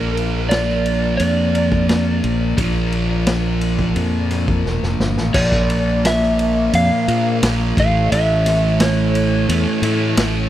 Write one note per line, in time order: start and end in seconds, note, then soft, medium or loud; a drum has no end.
0.00 1.17 A#1 medium
0.00 2.57 A#2 medium
0.00 2.58 F3 loud
0.00 5.33 F3 medium
0.00 2.60 A#3 loud
0.00 5.32 A#3 medium
0.00 5.31 D4 medium
0.00 0.47 A#4 medium
0.00 5.32 A#4 medium
0.17 ride medium
0.49 1.16 D5 medium
0.49 snare loud
0.49 ride medium
0.69 snare soft
0.86 ride medium
1.17 2.20 F2 medium
1.17 4.61 D5 medium
1.17 ride medium
1.55 ride medium
1.72 kick medium
1.89 snare loud
1.89 ride medium
2.24 2.56 A#1 medium
2.24 ride medium
2.57 3.93 A#1 medium
2.57 5.33 A#2 medium
2.57 5.33 F3 loud
2.57 5.34 A#3 medium
2.57 kick loud
2.57 ride medium
2.92 ride medium
3.27 snare loud
3.27 ride medium
3.61 ride medium
3.79 kick medium
3.96 4.62 F2 medium
3.96 ride medium
4.31 snare soft
4.31 ride medium
4.48 kick medium
4.65 4.81 E1 medium
4.65 snare medium
4.83 4.99 F1 medium
4.83 snare medium
5.00 5.16 G1 medium
5.00 snare medium
5.17 5.33 A1 medium
5.17 snare medium
5.33 6.69 A#1 loud
5.33 7.05 A#2 medium
5.33 7.74 F3 medium
5.33 7.06 F3 medium
5.33 7.73 A#3 medium
5.33 7.07 A#3 medium
5.33 7.74 D4 medium
5.33 7.74 A#4 medium
5.33 7.73 D5 medium
5.33 6.06 D5 medium
5.33 kick loud
5.33 crash loud
5.52 kick medium
5.70 ride medium
6.05 6.75 E5 medium
6.05 snare loud
6.05 ride medium
6.22 snare soft
6.39 ride medium
6.73 6.89 F2 medium
6.73 7.39 F5 loud
6.73 ride medium
7.08 7.40 A#2 medium
7.08 7.42 A#2 medium
7.08 7.42 F3 medium
7.08 7.41 A#3 medium
7.08 ride medium
7.43 7.74 A#1 medium
7.43 7.75 A#2 medium
7.43 7.76 F3 medium
7.43 7.77 A#3 medium
7.43 snare loud
7.43 ride medium
7.77 8.09 A1 medium
7.77 9.47 A2 medium
7.77 10.49 E3 medium
7.77 9.48 E3 medium
7.77 10.49 A3 medium
7.77 9.52 A3 medium
7.77 10.49 C#4 medium
7.77 10.49 A4 medium
7.77 10.49 C#5 medium
7.77 8.10 F5 loud
7.77 kick medium
7.77 ride medium
8.12 9.45 A1 loud
8.12 8.83 E5 loud
8.12 ride medium
8.46 snare soft
8.46 ride medium
8.80 10.14 C#5 medium
8.80 snare loud
8.80 ride medium
9.15 ride medium
9.49 9.65 E2 medium
9.49 9.81 A2 medium
9.49 9.82 E3 medium
9.49 9.84 A3 medium
9.49 ride medium
9.82 10.14 A2 medium
9.82 10.49 E3 medium
9.82 10.49 A3 medium
9.82 ride medium
9.88 10.49 A2 medium
10.17 10.49 A1 medium
10.17 snare loud
10.17 ride medium